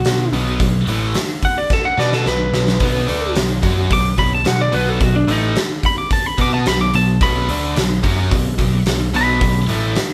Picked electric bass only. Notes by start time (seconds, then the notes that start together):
0.05 B1
0.32 B1
0.60 B1
0.87 A1
1.98 B2
2.26 B1
2.53 B1
2.81 B1
3.09 D2
3.36 B1
3.63 F#2
3.91 B1
4.18 B1
4.46 B1
4.73 B1
5.01 B1
5.27 A1
6.38 B2
6.66 B1
6.94 B1
7.21 B1
7.49 D2
7.76 B1
8.04 F#2
8.31 B1
8.59 B1
8.86 B1
9.14 B1
9.41 B1
9.69 A1